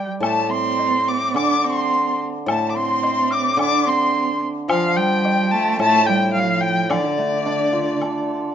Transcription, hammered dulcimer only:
0.00 0.79 G3 medium
0.20 1.34 A2 medium
1.34 3.03 D3 medium
2.46 3.58 A2 medium
3.57 5.24 D3 medium
4.69 6.35 F3 medium
5.79 6.90 A2 medium
6.90 8.55 D3 medium
7.18 8.30 A3 medium
7.46 8.55 D4 medium
7.73 8.55 F4 medium
8.02 8.55 A4 medium

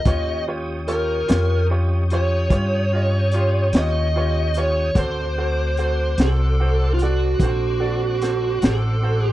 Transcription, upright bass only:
0.05 1.24 D#2 medium
1.30 2.48 F2 medium
2.50 3.69 G2 medium
3.73 4.92 D#2 medium
4.96 6.14 D2 medium
6.18 7.36 C2 medium
7.40 8.59 A#1 medium
8.63 9.32 A1 medium

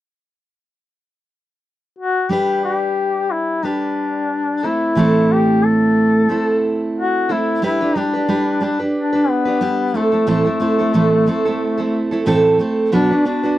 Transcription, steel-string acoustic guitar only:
2.29 3.61 G3 medium
2.29 3.63 D4 medium
2.29 3.63 G4 medium
2.29 3.64 B4 medium
3.63 4.63 G3 soft
3.63 4.63 D4 soft
3.63 4.64 G4 soft
3.63 4.63 B4 soft
4.63 4.96 A3 soft
4.63 4.97 C4 soft
4.63 4.97 E4 soft
4.63 4.96 A4 soft
4.95 6.29 A2 medium
4.95 6.29 E3 medium
4.95 6.28 A3 medium
4.95 6.29 C4 medium
4.95 6.30 E4 medium
4.95 6.30 A4 medium
6.29 7.29 A3 soft
6.29 7.29 C4 medium
6.29 7.28 E4 medium
6.29 7.28 A4 soft
7.29 7.61 A3 soft
7.29 7.62 C4 soft
7.29 7.63 E4 soft
7.29 7.62 A4 soft
7.62 7.80 G3 medium
7.62 7.81 D4 medium
7.62 7.81 G4 medium
7.62 7.79 B4 medium
7.80 7.95 D4 soft
7.80 7.96 G4 soft
7.80 7.96 B4 soft
7.96 8.14 G3 soft
7.96 8.14 D4 soft
7.96 8.14 G4 medium
7.96 8.12 B4 medium
8.13 8.27 D4 soft
8.13 8.28 G4 soft
8.13 8.29 B4 soft
8.28 8.59 G3 medium
8.28 8.60 D4 medium
8.28 8.61 G4 medium
8.28 8.62 B4 medium
8.61 8.80 G3 medium
8.61 8.80 D4 soft
8.61 8.79 G4 medium
8.61 8.78 B4 medium
8.79 9.14 D4 soft
8.79 9.13 G4 soft
8.79 9.11 B4 soft
9.13 9.47 D4 soft
9.13 9.46 G4 soft
9.13 9.44 B4 soft
9.45 9.60 D4 soft
9.45 9.61 G4 soft
9.45 9.61 B4 soft
9.61 9.94 G3 medium
9.61 9.95 D4 medium
9.61 9.95 G4 medium
9.61 9.95 B4 medium
9.94 10.13 A3 soft
9.94 10.12 C4 medium
9.94 10.12 E4 soft
9.94 10.11 A4 medium
10.12 10.26 A3 soft
10.12 10.26 C4 soft
10.12 10.27 E4 soft
10.12 10.27 A4 soft
10.27 10.46 A2 medium
10.27 10.46 E3 medium
10.27 10.46 A3 medium
10.27 10.45 C4 medium
10.27 10.45 E4 medium
10.27 10.43 A4 medium
10.45 10.58 A3 soft
10.45 10.59 C4 soft
10.45 10.60 E4 soft
10.45 10.60 A4 soft
10.60 10.79 A3 soft
10.60 10.79 C4 soft
10.60 10.78 E4 medium
10.60 10.77 A4 medium
10.79 10.93 A3 soft
10.79 10.94 C4 soft
10.79 10.94 E4 soft
10.79 10.94 A4 soft
10.93 11.27 A2 medium
10.93 11.27 E3 medium
10.93 11.25 A3 medium
10.93 11.26 C4 medium
10.93 11.27 E4 medium
10.93 11.28 A4 medium
11.26 11.45 A3 medium
11.26 11.46 C4 medium
11.26 11.45 E4 medium
11.26 11.44 A4 medium
11.45 11.79 A3 soft
11.45 11.78 C4 soft
11.45 11.77 E4 soft
11.45 11.76 A4 soft
11.77 12.12 A3 soft
11.77 12.12 C4 soft
11.77 12.11 E4 soft
11.77 12.10 A4 soft
12.11 12.25 A3 soft
12.11 12.26 C4 soft
12.11 12.26 E4 soft
12.11 12.27 A4 soft
12.26 12.60 A2 medium
12.26 12.60 E3 medium
12.26 12.58 A3 medium
12.26 12.59 C4 medium
12.26 12.60 E4 medium
12.26 12.60 A4 medium
12.59 12.92 A3 medium
12.59 12.92 C4 medium
12.59 12.93 E4 medium
12.59 12.93 A4 medium
12.92 13.11 B2 medium
12.92 13.11 F#3 medium
12.92 13.11 B3 medium
12.92 13.11 D4 medium
12.92 13.10 F#4 medium
12.92 13.09 B4 medium
13.10 13.24 B3 soft
13.10 13.25 D4 soft
13.10 13.25 F#4 soft
13.10 13.26 B4 soft
13.25 13.44 B3 soft
13.25 13.44 D4 medium
13.25 13.43 F#4 medium
13.25 13.42 B4 medium
13.43 13.58 B3 soft
13.43 13.58 D4 soft
13.43 13.58 F#4 soft
13.43 13.58 B4 soft

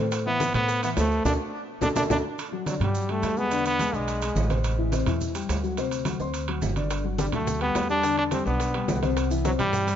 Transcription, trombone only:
0.27 0.53 B3 loud
0.55 0.81 B3 loud
0.85 0.90 B3 loud
0.99 1.24 A3 loud
1.26 1.32 D4 loud
1.83 1.89 D4 loud
1.96 2.03 D4 loud
2.11 2.17 D4 loud
2.69 2.75 F#3 medium
2.83 3.12 G3 medium
3.11 3.39 A3 loud
3.38 3.66 B3 loud
3.67 3.97 B3 loud
3.95 4.51 G#3 medium
7.20 7.26 G3 medium
7.34 7.60 A3 medium
7.62 7.88 B3 loud
7.90 8.16 D4 loud
8.18 8.25 D4 loud
8.32 8.45 C4 medium
8.47 8.99 B3 medium
9.45 9.52 F#3 medium
9.59 9.96 G3 loud

